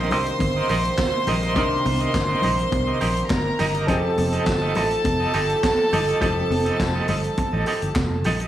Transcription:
Already playing: fingered electric bass A#1, grand piano C3 C4 D4 D#4 A#4, french horn section C3 D#3 G3 A#3, string section C5 C6, clean electric guitar D#5
0.00 clean electric guitar G4 A#4
0.11 fingered electric bass C2, clean electric guitar G4 A#4 D#5, open hi-hat, muted conga, low conga
0.26 muted clean electric guitar stroke, closed hi-hat
0.39 fingered electric bass G1, muted clean electric guitar stroke, kick, closed hi-hat, high conga
0.56 clean electric guitar G4 A#4 D#5
0.69 fingered electric bass A#1, clean electric guitar G4 A#4 D#5, open hi-hat, muted conga
0.85 muted clean electric guitar stroke, closed hi-hat
0.98 muted clean electric guitar stroke, kick, snare, clap, closed hi-hat, high conga
1.14 muted clean electric guitar stroke
1.27 fingered electric bass A#1, clean electric guitar G4 A#4 D#5, open hi-hat, muted conga, low conga
1.43 clean electric guitar G4 A#4 D#5, closed hi-hat
1.54 fingered electric bass C2, grand piano C3 C4 D4 D#4 A#4, clean electric guitar G4 A#4 D#5, kick, closed hi-hat, muted conga
1.72 muted clean electric guitar stroke
1.85 fingered electric bass C2, muted clean electric guitar stroke, open hi-hat, high conga
2.00 clean electric guitar G4 A#4 D#5, closed hi-hat
2.14 fingered electric bass G1, muted clean electric guitar stroke, kick, snare, clap, closed hi-hat
2.29 clean electric guitar G4 A#4 D#5
2.42 fingered electric bass A#1, clean electric guitar G4 A#4 D#5, open hi-hat, muted conga, low conga
2.58 muted clean electric guitar stroke, closed hi-hat
2.72 fingered electric bass C2, muted clean electric guitar stroke, kick, closed hi-hat, muted conga, high conga
2.87 clean electric guitar G4 A#4 D#5
3.01 fingered electric bass A#1, clean electric guitar G4 A#4 D#5, open hi-hat
3.16 muted clean electric guitar stroke, closed hi-hat
3.30 fingered electric bass G1, string section A#4 A#5, muted clean electric guitar stroke, kick, snare, clap, closed hi-hat, muted conga, high conga
3.45 muted clean electric guitar stroke
3.59 fingered electric bass G1, clean electric guitar G4 A#4 D#5, open hi-hat, muted conga, low conga
3.75 clean electric guitar G4 A#4 D#5, closed hi-hat
3.87 fingered electric bass F1, grand piano F3 C4 D#4 G4 G#4, french horn section F3 D#4 G4 A4, clean electric guitar G4 A4 D#5, string section A4 A5, kick, closed hi-hat
3.97 grand piano A4
4.04 muted clean electric guitar stroke
4.18 fingered electric bass F1, muted clean electric guitar stroke, open hi-hat, muted conga, high conga
4.32 clean electric guitar G4 A4 D#5, closed hi-hat
4.46 fingered electric bass G1, muted clean electric guitar stroke, kick, snare, clap, closed hi-hat, muted conga
4.62 clean electric guitar G4 A4 D#5
4.75 fingered electric bass A1, clean electric guitar G4 A4 D#5, open hi-hat, muted conga, low conga
4.91 muted clean electric guitar stroke, closed hi-hat
5.04 fingered electric bass F1, muted clean electric guitar stroke, kick, closed hi-hat, muted conga, high conga
5.20 clean electric guitar G4 A4 D#5
5.33 fingered electric bass G1, clean electric guitar G4 A4 D#5, open hi-hat
5.49 muted clean electric guitar stroke, closed hi-hat
5.63 muted clean electric guitar stroke, kick, snare, clap, closed hi-hat, muted conga, high conga
5.79 muted clean electric guitar stroke
5.93 fingered electric bass G1, clean electric guitar G4 A4 D#5, open hi-hat, muted conga, low conga
6.08 clean electric guitar G4 A4 D#5, closed hi-hat
6.20 fingered electric bass F1, grand piano F3 C4 D#4 G4 A4, clean electric guitar G4 A4 D#5, kick, closed hi-hat, low conga
6.36 muted clean electric guitar stroke
6.50 fingered electric bass F1, muted clean electric guitar stroke, open hi-hat, muted conga, high conga
6.66 clean electric guitar G4 A4 D#5, closed hi-hat
6.79 fingered electric bass F1, muted clean electric guitar stroke, kick, snare, clap, closed hi-hat
6.95 clean electric guitar G4 A4 D#5
7.08 fingered electric bass G1, clean electric guitar G4 A4 D#5, open hi-hat, low conga
7.24 muted clean electric guitar stroke, closed hi-hat
7.37 muted clean electric guitar stroke, kick, closed hi-hat, high conga
7.53 fingered electric bass A1, clean electric guitar G4 A4 D#5
7.66 clean electric guitar G4 A4 D#5, open hi-hat
7.82 fingered electric bass G1, muted clean electric guitar stroke, closed hi-hat
7.95 fingered electric bass F1, muted clean electric guitar stroke, kick, snare, clap, closed hi-hat, muted conga, high conga
8.12 muted clean electric guitar stroke
8.24 fingered electric bass A#1, clean electric guitar G4 A4 D#5, open hi-hat, muted conga, low conga
8.40 clean electric guitar G4 A4 D#5, closed hi-hat

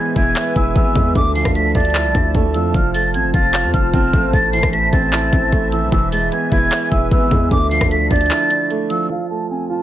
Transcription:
Already playing: grand piano E3 G#3 B3, analog synth pad B4 E5 G#5, flute G#6
0.16 808-style bass E1, grand piano E4, flute G#6, kick, closed hi-hat
0.36 grand piano E5, clap, closed hi-hat
0.56 808-style bass E1, grand piano E4, flute E6, kick, closed hi-hat
0.76 808-style bass G#1, grand piano B3, flute E6, kick, closed hi-hat
0.95 808-style bass E2, grand piano G#3, kick, closed hi-hat
1.15 808-style bass D2, grand piano D3, analog synth pad D5 A5, flute D6, kick, closed hi-hat
1.35 grand piano F3, flute C7, open hi-hat
1.45 808-style bass D2, kick, cross-stick
1.55 grand piano A3, flute B6, closed hi-hat
1.75 808-style bass D2, grand piano D4, flute A6, kick, closed hi-hat
1.80 closed hi-hat
1.85 closed hi-hat
1.90 closed hi-hat
1.95 grand piano E4, clap, closed hi-hat
2.05 808-style bass C2
2.15 808-style bass D2, grand piano D4, kick, closed hi-hat
2.35 808-style bass D2, grand piano A3, kick, closed hi-hat
2.54 808-style bass F2, grand piano F3, flute E6, closed hi-hat
2.74 808-style bass F1, grand piano F3, analog synth pad F4 C5 A5, flute F6, kick, closed hi-hat
2.94 grand piano A3, flute A6, open hi-hat
3.14 808-style bass A1, grand piano C4, flute G#6, closed hi-hat
3.24 808-style bass F1
3.34 808-style bass F1, grand piano F4, flute A6, kick, closed hi-hat
3.54 grand piano F5, clap, closed hi-hat
3.64 808-style bass F2
3.74 808-style bass F1, grand piano F4, flute F6, kick, closed hi-hat
3.94 808-style bass F1, grand piano C4, flute F6, kick, closed hi-hat
4.13 808-style bass A1, grand piano A3, kick, closed hi-hat
4.33 808-style bass A1, grand piano A2, analog synth pad E5, flute A6, kick, closed hi-hat
4.53 808-style bass G#1, grand piano E3, flute C7, open hi-hat
4.63 808-style bass A1, kick, cross-stick
4.72 grand piano A3, flute B6, closed hi-hat
4.92 808-style bass A1, grand piano C4, flute A6, kick, closed hi-hat
5.13 grand piano E4, clap, closed hi-hat
5.33 808-style bass A1, grand piano C4, kick, closed hi-hat
5.52 808-style bass A1, grand piano A3, kick, closed hi-hat
5.72 grand piano E3, flute E6, closed hi-hat
5.82 808-style bass B1
5.92 808-style bass E1, grand piano E3, analog synth pad B4 G#5, flute E6, kick, closed hi-hat
6.12 grand piano G#3, flute A6, open hi-hat
6.32 grand piano B3, flute G#6, closed hi-hat
6.52 808-style bass E1, grand piano E4, flute G#6, kick, closed hi-hat
6.72 grand piano E5, clap, closed hi-hat
6.91 808-style bass E1, grand piano E4, flute E6, kick, closed hi-hat
7.11 808-style bass G#1, grand piano B3, flute E6, kick, closed hi-hat
7.31 808-style bass E2, grand piano G#3, kick, closed hi-hat
7.51 808-style bass D2, grand piano D3, analog synth pad D5 A5, flute D6, kick, closed hi-hat
7.71 grand piano F3, flute C7, open hi-hat
7.81 808-style bass D2, kick, cross-stick
7.91 grand piano A3, flute B6, closed hi-hat
8.11 808-style bass D2, grand piano D4, flute A6, kick, closed hi-hat
8.16 closed hi-hat
8.21 closed hi-hat
8.26 closed hi-hat
8.31 grand piano E4, clap, closed hi-hat
8.50 grand piano D4, closed hi-hat
8.70 grand piano A3, closed hi-hat
8.90 grand piano F3, flute E6, closed hi-hat
9.10 grand piano F3, analog synth pad C4 A4 F5, flute F5
9.30 grand piano A3, flute A5
9.50 grand piano C4, flute G#5
9.70 grand piano F4, flute A5

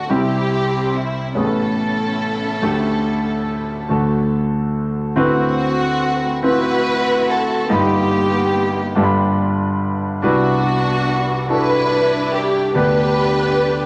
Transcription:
Already playing: grand piano A3 D4 F4 F#4 A4
0.09 grand piano C2 C3 G3 C4 E4 G4, string section C4 E4 G4
0.96 string section E4
1.35 grand piano A1 A2 B3 C#4 G4 G#4, string section C#4 E4 A4
1.43 grand piano A4
2.62 grand piano D2 D3 A3 G4 A4
3.89 grand piano D2 D3 A3 F#4 A4
5.16 grand piano D2 D3 C4 E4 F#4 B4, string section A3 C4 F#4
6.43 grand piano C4 E4 F4 B4, string section E4 F#4 B4
6.50 grand piano F#4
7.29 string section A4
7.69 grand piano G1 G2 D#4 F4 G4 B5, string section A#3 B3 G4
8.95 grand piano G1 G2 D4 F4 G4 A4
9.03 grand piano B5
10.22 grand piano C2 C3 D4 E4 F#4 B4, string section B3 D4 F#4
11.48 grand piano D4 E4 F#4 A4, string section D4 E4 B4
12.35 string section G4
12.74 grand piano D2 D3 B3 D4 G4 B4, string section D4 G4 B4

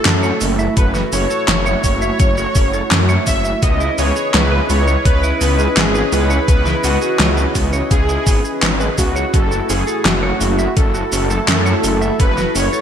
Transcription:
Already playing: analog synth pad A3 E4 F#4, supersaw synth A4
0.05 detuned saw bass F#2, clean electric guitar C#4, snare, clap, closed hi-hat, shaker
0.23 clean electric guitar C#5, shaker
0.41 detuned saw bass F#1, clean electric guitar C#4, open hi-hat, shaker
0.59 clean electric guitar E5, shaker
0.77 detuned saw bass F#1, clean electric guitar C#4, supersaw synth B4, kick, closed hi-hat, shaker
0.95 clean electric guitar F#4, snare, shaker
1.13 detuned saw bass F#1, clean electric guitar C#4, supersaw synth C#5, open hi-hat, shaker
1.30 clean electric guitar A4, shaker
1.48 detuned saw bass F#1, clean electric guitar C#4, snare, clap, closed hi-hat, shaker
1.66 clean electric guitar C#5, shaker
1.84 detuned saw bass F#1, clean electric guitar C#4, supersaw synth C#5, kick, open hi-hat, shaker
2.02 clean electric guitar E5, shaker
2.20 detuned saw bass F#1, clean electric guitar C#4, kick, closed hi-hat, shaker
2.38 clean electric guitar F#4, shaker
2.55 detuned saw bass F#1, clean electric guitar C#4, kick, open hi-hat, shaker
2.73 clean electric guitar A4, shaker
2.91 detuned saw bass F#2, clean electric guitar C#4, snare, clap, closed hi-hat, shaker
3.09 clean electric guitar C#5, shaker
3.27 detuned saw bass F#1, clean electric guitar C#4, supersaw synth E5, kick, open hi-hat, shaker
3.44 clean electric guitar E5, shaker
3.62 detuned saw bass C#2, clean electric guitar B3, analog synth pad C#4 E4 G#4 B4 D#5, supersaw synth D#5, kick, closed hi-hat, shaker
3.80 clean electric guitar E4, shaker
3.98 detuned saw bass C#2, clean electric guitar B3, supersaw synth C#5, open hi-hat, shaker
4.16 clean electric guitar G#4, shaker
4.34 detuned saw bass C#2, clean electric guitar B3, supersaw synth B4, snare, clap, closed hi-hat, shaker
4.52 clean electric guitar B4
4.70 detuned saw bass C#2, clean electric guitar B3, supersaw synth C#5, open hi-hat, shaker
4.88 clean electric guitar C#5, shaker
5.05 detuned saw bass C#2, clean electric guitar B3, supersaw synth B4, kick, closed hi-hat, shaker
5.23 clean electric guitar E4, shaker
5.41 detuned saw bass C#2, clean electric guitar B3, supersaw synth B4, open hi-hat, shaker
5.59 clean electric guitar G#4, shaker
5.77 detuned saw bass G#1, clean electric guitar B3, supersaw synth G#4, snare, clap, closed hi-hat, shaker
5.95 clean electric guitar B4, shaker
6.12 detuned saw bass C#2, clean electric guitar B3, supersaw synth B4, open hi-hat, shaker
6.30 clean electric guitar C#5, shaker
6.48 detuned saw bass C#2, clean electric guitar B3, supersaw synth B4, kick, closed hi-hat, shaker
6.66 clean electric guitar E4, snare, shaker
6.84 detuned saw bass C#2, clean electric guitar B3, supersaw synth F#4, open hi-hat, shaker
7.02 clean electric guitar G#4, shaker
7.19 detuned saw bass C#2, clean electric guitar B3, snare, clap, closed hi-hat, shaker
7.37 clean electric guitar B4, shaker
7.55 detuned saw bass C#2, clean electric guitar B3, kick, open hi-hat, shaker
7.73 clean electric guitar C#5, shaker
7.91 detuned saw bass C#2, clean electric guitar B3, supersaw synth G#4, kick, closed hi-hat, shaker
8.09 clean electric guitar E4, shaker
8.27 detuned saw bass G#1, clean electric guitar B3, kick, open hi-hat, shaker
8.44 clean electric guitar G#4, shaker
8.62 detuned saw bass G#1, clean electric guitar B3, snare, clap, closed hi-hat, shaker
8.80 clean electric guitar B4, shaker
8.98 detuned saw bass C#2, clean electric guitar B3, supersaw synth F#4, kick, open hi-hat, shaker
9.16 clean electric guitar C#5, shaker
9.34 detuned saw bass F#1, analog synth pad A3 E4 F#4, clean electric guitar C#4, supersaw synth A4, kick, closed hi-hat, shaker
9.51 clean electric guitar F#4, shaker
9.69 detuned saw bass F#1, clean electric guitar C#4, supersaw synth G#4, open hi-hat, shaker
9.87 clean electric guitar A4, shaker
10.05 detuned saw bass F#1, clean electric guitar C#4, supersaw synth F#4, snare, clap, closed hi-hat, shaker
10.23 clean electric guitar C#5
10.41 detuned saw bass F#1, clean electric guitar C#4, open hi-hat, shaker
10.59 clean electric guitar E5, shaker
10.77 detuned saw bass F#1, clean electric guitar C#4, supersaw synth A4, kick, closed hi-hat, shaker
10.94 clean electric guitar F#4, shaker
11.12 detuned saw bass F#1, clean electric guitar C#4, open hi-hat, shaker
11.30 clean electric guitar A4, shaker
11.48 detuned saw bass F#2, clean electric guitar C#4, snare, clap, closed hi-hat, shaker
11.66 clean electric guitar C#5, shaker
11.84 detuned saw bass F#1, clean electric guitar C#4, open hi-hat, shaker
12.01 clean electric guitar E5, shaker
12.19 detuned saw bass F#1, clean electric guitar C#4, supersaw synth B4, kick, closed hi-hat, shaker
12.37 clean electric guitar F#4, snare, shaker
12.55 detuned saw bass F#1, clean electric guitar C#4, supersaw synth C#5, open hi-hat, shaker
12.73 clean electric guitar A4, shaker

